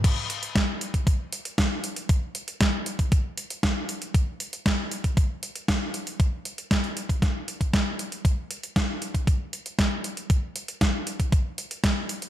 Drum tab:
CC |x---------------|----------------|----------------|----------------|
HH |x-xxx-xxx-xxx-xx|x-xxx-xxx-xxx-xx|x-xxx-xxx-xxx-xx|x-xxxxxxx-xxx-xx|
SD |----o-------o---|----o-------o---|----o-------o---|----o---o---o---|
BD |o---o--oo---o---|o---o--oo---o---|o---o--oo---o---|o---o--oo--oo---|

CC |----------------|----------------|
HH |x-xxx-xxx-xxx-xx|x-xxx-xxx-xxx-xx|
SD |----o-------o---|----o-------o---|
BD |o---o--oo---o---|o---o--oo---o---|